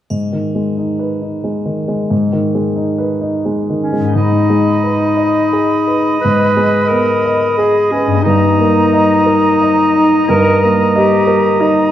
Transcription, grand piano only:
0.10 2.07 G#2 soft
0.32 0.69 D#3 soft
0.55 0.92 G#3 soft
0.77 1.14 D#4 soft
0.99 1.36 B4 soft
1.22 1.58 D#4 soft
1.44 1.80 G#3 soft
1.65 2.02 D#3 soft
1.88 2.24 G#3 soft
2.10 4.13 G#2 soft
2.32 2.68 D#3 soft
2.55 2.91 G#3 soft
2.76 3.13 D#4 soft
2.98 3.36 B4 soft
3.21 3.60 D#4 soft
3.45 3.84 G#3 soft
3.70 4.08 D#3 soft
3.93 4.17 G#3 soft
4.15 6.17 G#2 soft
4.50 5.04 G#3 soft
4.84 5.38 B4 soft
5.17 5.72 D#5 soft
5.53 6.08 G#4 soft
5.87 6.43 B4 soft
6.25 8.22 G#2 soft
6.57 7.11 G#3 soft
6.91 7.45 B3 soft
7.25 7.79 D#5 soft
7.59 8.12 G#4 soft
7.93 8.26 B4 soft
8.26 10.25 G2 soft
8.59 9.13 A#3 soft
8.93 9.46 D#5 soft
9.26 9.80 A#4 soft
9.61 10.15 D#5 soft
9.95 10.49 D#4 soft
10.29 11.92 G2 soft
10.63 11.15 A#3 soft
10.96 11.48 D#5 soft
11.27 11.80 A#4 soft
11.60 11.92 D#5 soft

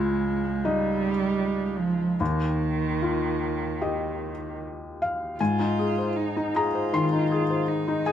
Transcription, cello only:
0.00 0.66 G#3 medium
0.65 1.80 G3 medium
1.79 2.21 F3 soft
2.19 4.60 D#3 medium
5.40 6.18 F4 soft
6.16 6.56 D#4 soft
6.55 7.69 F4 soft
7.68 8.12 D#4 soft

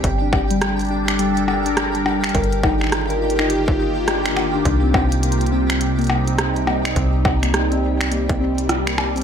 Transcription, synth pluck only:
0.22 0.30 D4 medium
0.50 0.59 G3 medium
0.90 1.04 D4 medium
1.19 1.33 G3 medium
1.66 1.74 D4 medium
1.95 2.03 G3 medium
2.35 2.48 A#4 medium
2.63 2.77 D#4 medium
3.10 3.18 A#4 medium
3.39 3.47 D#4 medium
3.79 3.92 D#4 medium
4.08 4.25 D4 medium
4.25 4.35 D#4 medium
4.37 4.54 D#4 medium
4.54 4.59 D4 medium
4.83 4.92 C4 medium
5.23 5.40 A#3 medium
5.52 5.65 C4 medium
5.99 6.09 A#3 medium
6.27 6.36 C4 medium
6.67 6.84 A#3 medium
6.96 7.10 C4 medium
7.43 7.53 A#3 medium
7.72 7.80 C4 medium
8.12 8.29 A#3 medium
8.40 8.54 C4 medium
8.87 8.98 A#3 medium
9.16 9.23 C4 medium

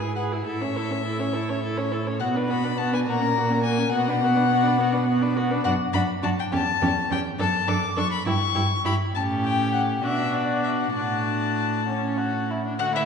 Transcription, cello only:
0.00 0.46 G#2 soft
0.47 2.22 A2 soft
2.20 3.08 B2 medium
3.07 3.93 A#2 medium
3.93 5.62 B2 medium
5.65 5.73 F#2 medium
5.93 6.01 F#2 medium
6.23 6.31 F#2 medium
6.53 6.61 E2 medium
6.82 6.90 E2 medium
7.10 7.18 E2 medium
7.39 7.47 F#2 medium
7.68 7.76 F#2 medium
7.97 8.05 F#2 medium
8.26 8.34 G2 medium
8.55 8.63 G2 medium
8.84 8.92 G2 medium
9.13 9.99 A2 medium
10.03 10.93 B2 medium
10.95 12.57 A2 medium
12.81 13.05 D3 medium

